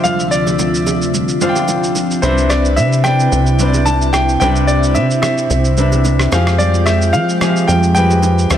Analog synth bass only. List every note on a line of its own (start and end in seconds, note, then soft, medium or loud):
2.23 2.79 C2 loud
2.77 3.29 C3 loud
3.32 4.37 C2 loud
4.41 4.97 C2 loud
4.96 5.47 C3 loud
5.50 6.28 C2 medium
6.32 7.15 F2 loud
7.14 7.65 F3 loud
7.68 8.46 F2 medium
8.50 8.58 D2 loud